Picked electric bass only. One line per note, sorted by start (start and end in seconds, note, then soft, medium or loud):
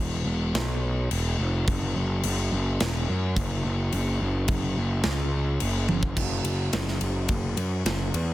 0.00 0.25 E1 medium
0.25 0.52 E1 loud
0.55 1.07 B1 loud
1.11 1.37 E1 loud
1.39 1.65 F1 medium
1.68 1.94 F#1 loud
1.96 2.22 F#1 medium
2.24 2.50 F#1 loud
2.52 2.78 F#1 loud
2.80 3.06 E1 loud
3.09 3.35 F#2 medium
3.36 3.62 F#1 loud
3.65 3.91 F#1 medium
3.93 4.19 F#1 loud
4.21 4.47 F#1 loud
4.48 4.75 F#1 medium
4.77 5.03 F#1 medium
5.05 5.57 C#2 loud
5.61 5.88 F#1 medium
5.89 6.16 F#1 medium
6.17 6.42 F#1 loud
6.44 6.69 F#1 medium
6.73 6.98 F#1 medium
7.01 7.26 F#1 medium
7.29 7.54 F#1 loud
7.57 7.82 F#2 medium
7.85 8.10 F#1 loud
8.14 8.34 E2 medium